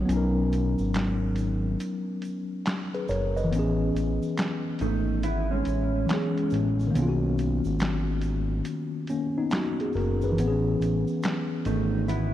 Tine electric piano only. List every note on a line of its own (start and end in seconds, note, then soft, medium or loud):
0.00 0.10 D#3 soft
0.00 0.02 F#3 soft
0.00 3.44 F#3 medium
0.00 0.09 C#4 medium
0.05 3.46 B3 medium
0.05 3.48 C#4 medium
0.13 3.50 D#4 medium
0.13 2.66 A#4 medium
2.95 3.09 G#4 soft
2.95 3.09 B4 medium
3.09 3.35 A#4 medium
3.09 3.35 C#5 medium
3.37 3.77 B4 medium
3.37 3.77 D#5 medium
3.44 6.01 E3 medium
3.51 6.05 B3 medium
3.51 6.07 C#4 medium
3.59 6.09 G#4 medium
6.06 6.93 E3 medium
6.06 6.94 G#3 medium
6.06 6.93 B3 medium
6.12 6.96 C#4 medium
6.12 6.97 G#4 medium
6.87 10.30 D#3 medium
6.87 9.03 A#3 medium
6.94 9.05 B3 medium
6.98 9.07 C#4 medium
6.98 7.07 F4 medium
7.09 9.12 F#4 medium
9.10 9.36 A#3 soft
9.10 9.35 C#4 medium
9.38 9.52 B3 medium
9.38 9.52 D#4 medium
9.54 9.79 D#4 medium
9.54 9.79 F#4 medium
9.81 9.95 G#4 medium
9.96 10.22 F#4 medium
9.96 10.21 A#4 medium
10.24 10.46 G#4 soft
10.24 10.64 B4 medium
10.32 12.34 E3 medium
10.40 12.34 B3 medium
10.40 10.49 C4 soft
10.47 12.34 C#4 medium
10.47 12.34 G#4 medium